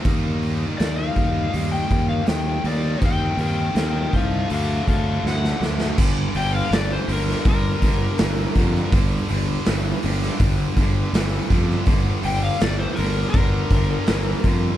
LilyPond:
<<
  \new Staff \with { instrumentName = "Electric slide guitar" } { \time 4/4 \key g \minor \tempo 4 = 81 r4 d''16 f''4 g''8 f''16 g''8 d''8 | <bes' g''>8 <bes' g''>8 <bes' g''>8 <c'' f''>8 <a' f''>8 <a' f''>8 fis''8 r8 | r8 g''16 f''16 d''16 c''16 bes'8 bes'2 | r1 |
r8 g''16 f''16 d''16 c''16 bes'8 bes'2 | }
  \new Staff \with { instrumentName = "Distorted electric guitar" } { \clef bass \time 4/4 \key g \minor <ees g bes ees'>2.~ <ees g bes ees'>8 <ees g bes ees'>8 | <ees g c' ees'>2 <d fis a d'>2 | <g, d>8 <g, d>8 <g, e>8 <g, d>8 <g, d>8 <g, d>8 <g, e>8 <g, d>8 | <g, d>8 <g, d>8 <g, e>8 <g, d>8 <g, d>8 <g, d>8 <g, e>8 <g, d>8 |
<g, d>8 <g, d>8 <g, e>8 <g, d>8 <g, d>8 <g, d>8 <g, e>8 <g, d>8 | }
  \new Staff \with { instrumentName = "Fingered electric bass" } { \clef bass \time 4/4 \key g \minor ees,4 ees,8 ees,8 ees,8 ees,8 ees,8 ees,8 | ees,8 ees,8 ees,8 c,8 d,8 d,8 d,8 d,8 | g,,8 g,,8 g,,8 g,,8 g,,8 g,,8 g,,8 f,8 | g,,8 g,,8 g,,8 g,,8 g,,8 g,,8 g,,8 f,8 |
g,,8 g,,8 g,,8 g,,8 g,,8 g,,8 g,,8 f,8 | }
  \new DrumStaff \with { instrumentName = "Drums" } \drummode { \time 4/4 <hho bd>8 hho8 <hho sn>8 <hho bd>8 hho8 <hho bd>8 <hho sn>8 hho8 | <hho bd>8 hho8 <hho sn>8 <hho bd>8 hho8 <hho bd>8 sn16 sn16 sn16 sn16 | <cymc bd>8 hho8 <hho sn>8 hho16 sn16 <hho bd>8 <hho bd>8 <hho sn>8 <hho bd>16 sn16 | <hho bd>8 hho8 <hho sn>8 hho16 sn16 <hho bd>8 <hho bd>8 <hho sn>8 <hho bd>16 sn16 |
<hho bd>8 hho8 <hho sn>8 hho8 <hho bd>8 <hho bd>8 <hho sn>8 <hho bd>8 | }
>>